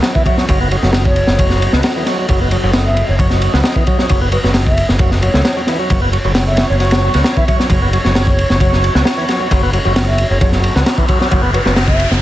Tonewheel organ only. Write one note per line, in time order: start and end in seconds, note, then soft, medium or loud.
0.15 0.23 E3 medium
0.26 0.37 F#3 medium
0.38 0.46 F#3 loud
0.49 0.59 F#3 medium
0.61 0.68 B3 medium
0.72 0.76 F#3 medium
0.83 0.91 F#3 loud
1.39 1.72 F#3 medium
1.74 1.81 B3 medium
1.96 2.04 E3 medium
2.07 2.18 F#3 medium
2.19 2.26 F#3 loud
2.30 2.40 F#3 medium
2.41 2.49 B3 medium
2.52 2.57 F#3 medium
2.63 2.71 F#3 loud
3.19 3.52 F#3 medium
3.54 3.61 B3 medium
3.76 3.84 E3 medium
3.87 3.98 F#3 medium
3.99 4.06 F#3 loud
4.10 4.20 F#3 medium
4.21 4.29 B3 medium
4.32 4.37 F#3 medium
4.44 4.52 F#3 loud
5.00 5.10 F#3 medium
5.22 5.31 F#3 loud
5.34 5.42 A3 medium
5.57 5.61 F#3 medium
5.68 5.78 E3 medium
5.79 5.89 F#3 loud
5.90 6.01 F#3 medium
6.02 6.10 B3 medium
6.13 6.18 F#3 medium
6.25 6.32 F#3 loud
6.80 7.13 F#3 medium
7.14 7.22 B3 medium
7.37 7.45 E3 medium
7.48 7.58 F#3 medium
7.59 7.67 F#3 loud
7.70 7.81 F#3 medium
7.82 7.90 B3 medium
7.93 7.98 F#3 medium
8.05 8.12 F#3 loud
8.61 8.94 F#3 medium
8.95 9.03 B3 medium
9.18 9.25 E3 medium
9.29 9.39 F#3 medium
9.40 9.48 F#3 loud
9.51 9.62 F#3 medium
9.63 9.70 B3 medium
9.73 9.78 F#3 medium
9.85 9.93 F#3 loud
10.41 10.74 F#3 medium
10.75 10.83 B3 medium
10.98 11.06 E3 medium
11.09 11.19 F#3 medium
11.20 11.28 F#3 loud
11.31 11.42 F#3 medium
11.43 11.51 B3 medium
11.54 11.59 F#3 medium
11.65 11.73 F#3 loud